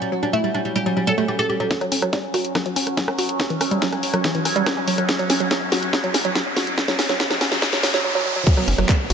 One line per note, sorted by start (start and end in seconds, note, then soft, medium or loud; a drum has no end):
0.00 1.69 F#3 medium
0.00 0.08 G3 medium
0.00 1.69 C#4 medium
0.12 0.16 F#3 medium
0.23 0.29 G3 medium
0.23 0.27 D4 medium
0.33 0.37 A3 loud
0.33 0.40 E4 medium
0.44 0.48 G3 medium
0.44 0.50 G3 medium
0.54 0.61 G3 medium
0.54 0.58 D4 medium
0.65 0.71 G3 medium
0.76 0.81 G3 medium
0.76 0.82 G4 medium
0.86 0.90 F#3 medium
0.86 0.93 G3 medium
0.97 1.00 F#3 medium
0.97 1.03 G3 medium
1.07 1.10 G3 medium
1.07 1.14 A4 medium
1.18 1.24 G3 medium
1.18 1.22 A3 loud
1.28 1.35 G3 medium
1.28 1.32 G4 medium
1.39 1.43 G4 medium
1.39 1.45 A4 loud
1.50 1.56 G3 medium
1.50 1.53 G4 medium
1.60 1.64 F#3 loud
1.60 1.66 G3 medium
1.71 8.04 F#3 medium
1.71 1.74 F#3 medium
1.71 8.04 C#4 medium
1.71 kick loud
1.71 snare soft
1.71 closed hi-hat medium
1.71 riser medium
1.81 1.85 F#3 loud
1.81 cross-stick soft
1.81 closed hi-hat soft
1.92 1.96 C#4 medium
1.92 open hi-hat loud
2.02 2.06 F#3 medium
2.02 cross-stick medium
2.13 2.15 G3 loud
2.13 kick loud
2.13 snare soft
2.13 closed hi-hat medium
2.34 2.36 F#4 medium
2.34 cross-stick soft
2.34 open hi-hat medium
2.45 closed hi-hat medium
2.55 2.57 F#3 medium
2.55 kick loud
2.55 cross-stick medium
2.55 snare medium
2.55 closed hi-hat medium
2.66 2.68 F#3 medium
2.66 closed hi-hat soft
2.76 2.80 C#4 medium
2.76 open hi-hat loud
2.87 cross-stick soft
2.87 closed hi-hat medium
2.97 3.01 F#3 medium
2.97 kick loud
2.97 snare medium
2.97 closed hi-hat medium
3.08 3.12 C#4 medium
3.08 cross-stick medium
3.19 3.21 F#4 medium
3.19 open hi-hat loud
3.29 closed hi-hat medium
3.40 kick loud
3.40 cross-stick soft
3.40 snare medium
3.40 closed hi-hat medium
3.50 3.54 E3 medium
3.50 closed hi-hat soft
3.61 3.65 C#4 medium
3.61 cross-stick medium
3.61 open hi-hat loud
3.71 3.75 G3 medium
3.71 closed hi-hat medium
3.82 3.86 F#3 medium
3.82 kick loud
3.82 snare medium
3.82 closed hi-hat medium
3.92 3.96 C#4 medium
3.92 cross-stick soft
3.92 closed hi-hat soft
4.03 open hi-hat loud
4.14 4.19 F#3 medium
4.14 cross-stick medium
4.14 closed hi-hat medium
4.24 4.28 E3 medium
4.24 kick loud
4.24 snare medium
4.24 closed hi-hat medium
4.35 4.39 E3 medium
4.35 closed hi-hat soft
4.45 4.49 C#4 medium
4.45 cross-stick soft
4.45 open hi-hat loud
4.56 4.60 G3 loud
4.56 closed hi-hat medium
4.66 kick loud
4.66 cross-stick medium
4.66 snare medium
4.66 closed hi-hat medium
4.77 4.81 C#4 medium
4.88 4.93 F#3 medium
4.88 open hi-hat loud
4.98 5.04 F#3 medium
4.98 cross-stick soft
4.98 closed hi-hat medium
5.09 5.12 F#3 medium
5.09 kick loud
5.09 snare medium
5.09 closed hi-hat medium
5.19 5.23 F#3 medium
5.19 closed hi-hat soft
5.30 5.34 C#4 medium
5.30 snare medium
5.30 open hi-hat loud
5.40 5.44 F#3 medium
5.40 closed hi-hat medium
5.51 5.53 F#3 medium
5.51 kick loud
5.51 snare medium
5.51 closed hi-hat medium
5.72 5.74 F#4 medium
5.72 snare medium
5.72 open hi-hat loud
5.83 closed hi-hat medium
5.93 5.97 F#3 medium
5.93 kick loud
5.93 snare medium
5.93 closed hi-hat medium
6.04 6.08 F#3 loud
6.04 closed hi-hat soft
6.14 6.18 C#4 medium
6.14 snare medium
6.14 open hi-hat loud
6.25 6.29 F#3 loud
6.25 closed hi-hat medium
6.35 6.38 F#3 loud
6.35 kick loud
6.35 snare medium
6.35 closed hi-hat medium
6.57 6.59 F#4 medium
6.57 snare medium
6.57 open hi-hat loud
6.67 closed hi-hat medium
6.78 6.81 F#3 medium
6.78 kick loud
6.78 snare medium
6.78 closed hi-hat medium
6.78 noise sweep medium
6.88 6.92 F#3 loud
6.88 snare medium
6.88 closed hi-hat soft
6.99 7.03 C#4 medium
6.99 snare loud
6.99 open hi-hat loud
7.09 7.13 F#3 loud
7.09 snare medium
7.09 closed hi-hat soft
7.20 7.24 F#3 medium
7.20 kick loud
7.20 snare loud
7.20 closed hi-hat medium
7.31 7.34 F#3 loud
7.31 snare medium
7.31 closed hi-hat soft
7.41 7.45 C#4 medium
7.41 snare loud
7.41 open hi-hat loud
7.52 7.55 F#3 loud
7.52 snare medium
7.52 closed hi-hat medium
7.62 7.66 F#3 medium
7.62 kick loud
7.62 snare loud
7.62 closed hi-hat medium
7.73 7.77 F#3 loud
7.73 snare medium
7.73 closed hi-hat soft
7.83 7.87 F#3 medium
7.83 snare loud
7.83 open hi-hat loud
7.94 7.98 F#3 loud
7.94 snare medium
7.94 closed hi-hat medium
8.04 8.08 F#3 medium
8.15 8.19 F#3 loud
8.26 8.29 F#3 medium
8.36 8.40 F#3 loud
8.47 9.13 F#3 medium
8.47 8.51 F#3 medium
8.47 9.13 C#4 medium
8.47 kick loud
8.47 closed hi-hat medium
8.47 crash loud
8.47 downlifter medium
8.57 8.61 F#3 loud
8.57 cross-stick soft
8.57 closed hi-hat soft
8.68 8.75 F#1 medium
8.68 8.72 C#4 medium
8.68 open hi-hat loud
8.78 8.85 F#1 medium
8.78 8.82 F#3 loud
8.78 cross-stick medium
8.78 closed hi-hat medium
8.89 8.91 G3 loud
8.89 kick loud
8.89 clap loud
8.89 closed hi-hat medium
9.10 9.13 F#1 loud
9.10 9.12 F#4 medium
9.10 cross-stick soft
9.10 open hi-hat loud